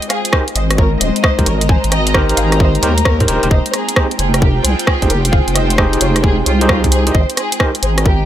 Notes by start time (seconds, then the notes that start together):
Already playing: G#3 A#3 C4 D#4 F4 C5 G5
0.02 D#5, closed hi-hat
0.10 G#4 F5, cross-stick, open hi-hat
0.25 closed hi-hat
0.33 D#4 G4 A#4 C5, kick, cross-stick
0.48 open hi-hat
0.56 G#1 C5 D#5, open hi-hat
0.71 cross-stick, closed hi-hat
0.78 A#4 C#5 A#5, kick
1.01 D#1 C5 D#5, open hi-hat
1.16 closed hi-hat
1.24 C5 D#5, kick, cross-stick
1.39 C2 D#4 G4 A#4 C5, kick, closed hi-hat
1.46 G#1 A#4 C#5, open hi-hat
1.61 closed hi-hat
1.69 C5 G#5, kick
1.84 G#1, closed hi-hat
1.92 D#5 G5, cross-stick, open hi-hat
2.07 closed hi-hat
2.14 D#4 G4 A#4 C5, kick, cross-stick
2.29 open hi-hat
2.37 G#1 G#4 F5, open hi-hat
2.52 cross-stick, closed hi-hat
2.60 C5 D#5, kick
2.75 closed hi-hat
2.83 D#2 D#4 G4 A#4 C5 C#5, open hi-hat
2.98 closed hi-hat
3.05 A#4 C#5, kick, cross-stick
3.20 G#2 D#4 G4 A#4 C5, kick, closed hi-hat
3.28 D#1 D#4 G4 A#4 C5 C#5, open hi-hat
3.43 D#1 D#4 G4 A#4 C5, closed hi-hat
3.51 F1 G#3 F4 C5 D#5, kick
3.66 G5, closed hi-hat
3.74 G#4 C5, cross-stick, open hi-hat
3.89 C5, closed hi-hat
3.96 D#4 G4 G#4 C5, kick, cross-stick
4.11 open hi-hat
4.19 F1 G#4 C5, open hi-hat
4.34 cross-stick, closed hi-hat
4.42 G4 A#4, kick
4.64 C2 G#4 C5, open hi-hat
4.79 closed hi-hat
4.87 G#4 C5, kick, cross-stick
5.02 G#1 D#4 G4 G#4 C5, kick, closed hi-hat
5.10 F1 G4 A#4, open hi-hat
5.25 closed hi-hat
5.33 G#4 F5, kick
5.48 F1, closed hi-hat
5.56 C5 D#5, cross-stick, open hi-hat
5.70 closed hi-hat
5.78 D#4 G4 G#4 C5, kick, cross-stick
5.93 open hi-hat
6.01 F1 F4 C#5, open hi-hat
6.16 cross-stick, closed hi-hat
6.24 G#4 C5, kick
6.46 C2 F4 C#5, open hi-hat
6.61 D#4 G4 G#4 C5, closed hi-hat
6.69 F4 C#5, kick, cross-stick
6.84 kick, closed hi-hat
6.92 G#4 C5, open hi-hat
7.07 D#4 G4 G#4 C5, closed hi-hat
7.14 G#1 G#3 A#3 C5 D#5, kick
7.30 closed hi-hat
7.37 G#4 C5 D#5, cross-stick, open hi-hat
7.42 A#5
7.52 closed hi-hat
7.60 D#4 G4 A#4 C5, kick, cross-stick
7.75 open hi-hat
7.83 G#1 G#4 C5, open hi-hat
7.98 cross-stick, closed hi-hat
8.06 G4 A#4, kick